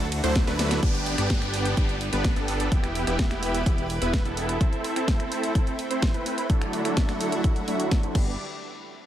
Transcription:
Already playing: D2 D3 A3 E4 F#4
0.00 closed hi-hat
0.12 open hi-hat, ride
0.24 D2 F#3 A3 D4 E4 C5, closed hi-hat
0.35 kick, snare, closed hi-hat
0.47 D2 F#3 A3 D4 E4 B4, snare, closed hi-hat
0.59 snare, open hi-hat, ride
0.71 snare, closed hi-hat
0.83 G1 B3 D4 G4, kick, closed hi-hat, downlifter
0.95 closed hi-hat
1.06 open hi-hat
1.18 G1 B3 D4 G4, finger snap, closed hi-hat
1.30 kick, snare, closed hi-hat
1.42 finger snap, closed hi-hat
1.54 open hi-hat
1.65 closed hi-hat
1.77 G1 B3 D4 G4, kick, closed hi-hat
1.89 closed hi-hat
2.01 open hi-hat
2.13 G1 B3 D4 B4, closed hi-hat
2.24 kick, snare, closed hi-hat
2.36 G1 B3 D4 A4, closed hi-hat
2.48 open hi-hat
2.60 closed hi-hat
2.72 E1 E3 B3 E4 G4 B4, kick, closed hi-hat
2.84 finger snap, closed hi-hat
2.95 open hi-hat
3.07 E1 B3 E4 G4, finger snap, closed hi-hat
3.19 kick, snare, closed hi-hat
3.31 finger snap, snare, closed hi-hat
3.43 open hi-hat
3.54 closed hi-hat
3.66 E1 B3 E4 G4, kick, closed hi-hat
3.78 closed hi-hat
3.90 open hi-hat
4.02 E1 B3 E4 B4, closed hi-hat
4.13 kick, snare, closed hi-hat
4.25 E1 B3 E4 A4, closed hi-hat
4.37 open hi-hat
4.49 closed hi-hat
4.61 A3 C4 E4 A4, kick, closed hi-hat
4.73 closed hi-hat
4.84 open hi-hat
4.96 C4 E4 A4, finger snap, closed hi-hat
5.08 kick, snare, closed hi-hat
5.20 finger snap, closed hi-hat
5.32 open hi-hat
5.43 closed hi-hat
5.55 C4 E4 A4, kick, closed hi-hat
5.67 closed hi-hat
5.79 open hi-hat
5.91 C4 E4 C5, closed hi-hat
6.02 kick, snare, closed hi-hat
6.14 C4 E4 B4, closed hi-hat
6.26 open hi-hat
6.38 closed hi-hat
6.50 D3 F#3 A3 D4 E4 F#4 A4, kick, closed hi-hat
6.61 finger snap, closed hi-hat
6.73 open hi-hat
6.85 F#3 A3 D4 E4 A4, finger snap, closed hi-hat
6.97 kick, snare, closed hi-hat
7.09 finger snap, snare, closed hi-hat
7.21 open hi-hat
7.32 closed hi-hat
7.44 F#3 A3 D4 E4 A4, kick, closed hi-hat
7.56 closed hi-hat
7.68 F#3 A3 D4 E4 F#4, open hi-hat
7.80 closed hi-hat
7.91 kick, snare, closed hi-hat
8.03 F#3 A3 D4 E4 C5, closed hi-hat
8.15 G1 G3 B3 D4 G4 B4 D5, kick, crash

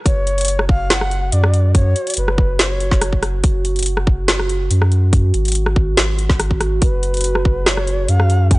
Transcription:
0.05 F#1 F#4 C#5, kick, closed hi-hat
0.27 closed hi-hat
0.38 closed hi-hat
0.41 closed hi-hat
0.45 closed hi-hat
0.48 closed hi-hat
0.59 cross-stick
0.69 F5, kick
0.90 F#5, cross-stick, snare, closed hi-hat
1.01 cross-stick
1.11 closed hi-hat
1.32 F#2 D5, closed hi-hat
1.44 cross-stick
1.54 closed hi-hat
1.75 C#5, kick, closed hi-hat
1.96 closed hi-hat
2.07 closed hi-hat
2.10 closed hi-hat
2.14 closed hi-hat
2.17 F#1 B4, closed hi-hat
2.28 cross-stick
2.38 kick
2.59 C5, snare, closed hi-hat
2.71 C#5
2.80 closed hi-hat
2.91 kick, snare
3.02 cross-stick, closed hi-hat
3.13 kick
3.23 cross-stick, closed hi-hat
3.44 F#1, kick, closed hi-hat
3.65 closed hi-hat
3.76 closed hi-hat
3.79 closed hi-hat
3.83 closed hi-hat
3.86 closed hi-hat
3.97 cross-stick
4.07 kick
4.28 cross-stick, snare, closed hi-hat
4.39 cross-stick
4.49 closed hi-hat
4.71 F#2, closed hi-hat
4.82 cross-stick
4.92 closed hi-hat
5.13 kick, closed hi-hat
5.34 G#1, closed hi-hat
5.45 closed hi-hat
5.48 closed hi-hat
5.52 closed hi-hat
5.55 closed hi-hat
5.66 cross-stick
5.76 kick
5.97 G#1, snare, closed hi-hat
6.19 closed hi-hat
6.30 kick, snare
6.40 cross-stick, closed hi-hat
6.51 kick
6.61 cross-stick, closed hi-hat
6.82 F#1 G#4 B4, kick, closed hi-hat
7.03 closed hi-hat
7.14 closed hi-hat
7.17 closed hi-hat
7.21 closed hi-hat
7.24 closed hi-hat
7.35 cross-stick
7.45 kick
7.66 C#5, cross-stick, snare, closed hi-hat
7.77 cross-stick
7.87 closed hi-hat
8.08 F#2 F5, closed hi-hat
8.20 cross-stick
8.30 closed hi-hat
8.51 G#5, kick, closed hi-hat
8.55 F#5

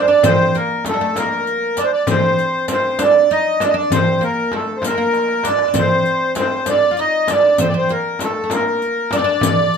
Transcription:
0.08 D4 D5
0.23 C4 C5, riq, frame drum, darbuka dum
0.55 A#3 A#4, riq, darbuka ka
0.85 A3 A4, riq, darbuka tek, frame drum
0.94 G3
1.01 A3
1.16 A#3 A#4, riq, darbuka tek, frame drum
1.47 riq, darbuka ka
1.77 D4 D5, riq, darbuka tek
1.84 C5
1.93 D5
2.07 C4 C5, riq, frame drum, darbuka dum
2.38 riq, darbuka ka
2.68 C4 C5, riq, darbuka tek, frame drum
2.99 D4 D5, riq, darbuka tek, frame drum
3.30 D#4 D#5, riq, darbuka ka
3.60 D4 D5, riq, darbuka tek, frame drum
3.68 D#5
3.74 D4 D5
3.90 C4 C5, riq, darbuka dum, frame drum
4.21 A#3 A#4, riq
4.52 A3 A4, darbuka tek, frame drum
4.77 C5
4.82 A#3 A#4, riq, darbuka tek, frame drum
4.90 C4
4.98 A#3
5.13 riq, darbuka tek
5.28 darbuka ka
5.43 D4 D5, riq, darbuka tek, frame drum
5.59 darbuka ka
5.68 D4
5.74 C4, riq, darbuka dum, frame drum
5.78 C5
6.05 riq, darbuka ka
6.35 C4 C5, riq, darbuka tek, frame drum
6.66 D4 D5, riq, darbuka tek, frame drum
6.91 F4
6.97 D#4 D#5, riq, darbuka ka
7.28 D4 D5, riq, darbuka tek, frame drum
7.58 C4 C5, riq, frame drum, darbuka dum
7.68 D5
7.74 C4 C5
7.89 A#3 A#4, riq, darbuka ka
8.19 A3 A4, riq, darbuka tek, frame drum
8.44 A3
8.50 A#3 A#4, riq, darbuka tek, frame drum
8.82 riq, darbuka ka
9.11 D4 D5, riq, darbuka tek, frame drum
9.19 C4
9.24 D4
9.41 riq, frame drum, darbuka dum
9.73 riq, darbuka ka

